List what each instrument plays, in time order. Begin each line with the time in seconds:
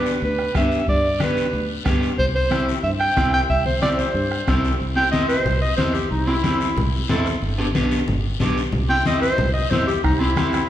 Already playing: clean electric guitar B3 D4 G4, clarinet B4
0.06 short guiro
0.22 fingered electric bass D2, clarinet B4, long guiro
0.39 bombo rim
0.55 fingered electric bass G2, clean electric guitar B3 D4 G4, clarinet E5, bombo low, bombo rim, high conga, short guiro
0.72 short guiro
0.88 fingered electric bass G2, clarinet D5, bombo low, long guiro
1.20 clean electric guitar B3 D4 G4, clarinet B4, bombo rim, high conga, short guiro
1.37 short guiro
1.53 fingered electric bass D2, long guiro
1.85 fingered electric bass G2, clean electric guitar B3 D4 G4, bombo low, bombo rim, high conga, short guiro
2.03 short guiro
2.19 fingered electric bass C2, clarinet C5, bombo low, long guiro
2.35 clarinet C5
2.51 clean electric guitar C4 E4 G4, bombo rim, high conga, short guiro
2.69 short guiro
2.83 fingered electric bass G2, clarinet E5, long guiro
3.00 clarinet G5, bombo rim
3.17 fingered electric bass C2, clean electric guitar C4 E4 G4, bombo low, bombo rim, high conga, short guiro
3.34 clarinet G5, short guiro
3.50 fingered electric bass C2, clarinet E5, bombo low, long guiro
3.66 clarinet C5, high conga
3.82 clean electric guitar C4 E4 G4, clarinet D5, bombo rim, high conga, short guiro
3.97 clarinet C5, short guiro
4.14 fingered electric bass G2, long guiro
4.32 bombo rim
4.47 fingered electric bass C2, clean electric guitar C4 E4 G4, bombo low, bombo rim, high conga, short guiro
4.64 short guiro
4.80 fingered electric bass C2, high conga, long guiro
4.96 clean electric guitar C4 E4 G4, clarinet G5
5.11 fingered electric bass E2, clean electric guitar C4 E4 G4, clarinet D#5, high conga, short guiro
5.28 clarinet C5, short guiro
5.45 fingered electric bass C2, high conga, low conga, long guiro
5.62 clarinet D#5
5.77 fingered electric bass E2, clean electric guitar C4 E4 G4, clarinet C5, high conga, short guiro
5.94 clarinet G4, short guiro
6.11 fingered electric bass C2, clarinet D#4, high conga, long guiro
6.27 clean electric guitar C4 E4 G4, clarinet E4
6.43 fingered electric bass E2, clean electric guitar C4 E4 G4, high conga, short guiro
6.61 short guiro
6.77 fingered electric bass C2, high conga, low conga, long guiro
7.09 fingered electric bass E2, clean electric guitar C4 E4 A4, high conga, low conga, short guiro
7.26 short guiro
7.42 fingered electric bass G1, high conga, long guiro
7.58 clean electric guitar B3 D4 G4
7.75 fingered electric bass B1, clean electric guitar B3 D4 G4, high conga, short guiro
7.91 short guiro
8.08 fingered electric bass G1, high conga, low conga, long guiro
8.40 fingered electric bass B1, clean electric guitar B3 D4 G4, high conga, low conga, short guiro
8.58 short guiro
8.72 fingered electric bass C2, high conga, low conga, long guiro
8.89 clean electric guitar C4 E4 G4, clarinet G5
9.06 fingered electric bass E2, clean electric guitar C4 E4 G4, clarinet D#5, high conga, short guiro
9.22 clarinet C5, short guiro
9.38 fingered electric bass C2, high conga, low conga, long guiro
9.53 clarinet D#5
9.70 fingered electric bass E2, clean electric guitar C4 E4 G4, clarinet C5, high conga, low conga, short guiro
9.87 clarinet G4, short guiro
10.04 fingered electric bass C2, clarinet D#4, bombo low, bombo rim, high conga, long guiro
10.20 clean electric guitar C4 E4 G4, clarinet E4
10.36 fingered electric bass E2, clean electric guitar C4 E4 G4, bombo rim, high conga, short guiro
10.53 bombo rim, short guiro